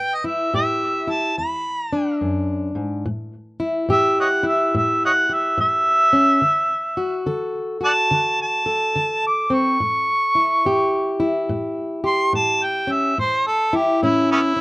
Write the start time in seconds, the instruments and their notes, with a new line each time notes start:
Already playing: steel-string acoustic guitar A2, harmonica G5
0.15 harmonica D#5
0.24 steel-string acoustic guitar E4, harmonica E5
0.54 steel-string acoustic guitar A2 G4, harmonica E5
1.07 steel-string acoustic guitar E4, harmonica A5
1.38 steel-string acoustic guitar E2, harmonica B5
1.93 steel-string acoustic guitar D4
2.21 steel-string acoustic guitar F#2
2.75 steel-string acoustic guitar G#2
3.06 steel-string acoustic guitar A2
3.60 steel-string acoustic guitar E4
3.89 steel-string acoustic guitar A2 G4, harmonica E5
4.20 harmonica C#5 D#5 F#5
4.43 steel-string acoustic guitar E4
4.48 harmonica E5
4.75 steel-string acoustic guitar A2, harmonica E5
5.05 harmonica C#5 D#5 F#5
5.29 steel-string acoustic guitar G4, harmonica E5
5.58 steel-string acoustic guitar A2, harmonica E5
6.13 steel-string acoustic guitar C#4
6.42 steel-string acoustic guitar D3
6.97 steel-string acoustic guitar F#4
7.26 steel-string acoustic guitar D3 A4
7.81 steel-string acoustic guitar F#4, harmonica D5 F#5 A5
8.11 steel-string acoustic guitar D3
8.42 harmonica A5
8.66 steel-string acoustic guitar A4
8.96 steel-string acoustic guitar D3
9.27 harmonica D6
9.50 steel-string acoustic guitar C4, harmonica C#6
9.80 steel-string acoustic guitar A2
10.35 steel-string acoustic guitar E4
10.66 steel-string acoustic guitar A2 G4
11.20 steel-string acoustic guitar E4
11.49 steel-string acoustic guitar A2
12.04 steel-string acoustic guitar G4, harmonica C6
12.33 steel-string acoustic guitar A2, harmonica A5
12.64 harmonica G5
12.87 steel-string acoustic guitar C#4
12.92 harmonica E5
13.18 steel-string acoustic guitar A2, harmonica C5
13.47 harmonica A4
13.73 steel-string acoustic guitar E4, harmonica G4
14.03 steel-string acoustic guitar A2 C#4, harmonica E4
14.32 harmonica B3 C#4 E4
14.56 steel-string acoustic guitar C#4